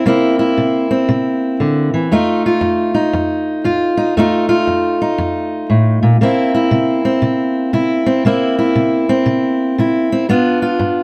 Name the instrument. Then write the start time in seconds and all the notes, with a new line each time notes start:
steel-string acoustic guitar
0.06 C3 A#3 C4 E4
0.39 E4
0.57 C3
0.91 C4
1.09 C3
1.60 D3
1.94 E3
2.11 F2 A3 D#4 F4
2.46 F4
2.61 F2
2.94 D#4
3.13 F2
3.64 F2 F4
3.97 D#4
4.17 F2 A3 D#4 F4
4.49 F4
4.67 F2
5.02 D#4
5.18 F2
5.70 A2
6.03 A#2
6.21 C3 A#3 C4 E4
6.55 E4
6.71 C3
7.05 C4
7.22 C3
7.73 C3 E4
8.06 C4
8.25 C3 A#3 C4 E4
8.59 E4
8.75 C3
9.09 C4
9.26 C3
9.78 C3 E4
10.12 C4
10.29 G2 B3 D4 F4
10.62 F4
10.79 G2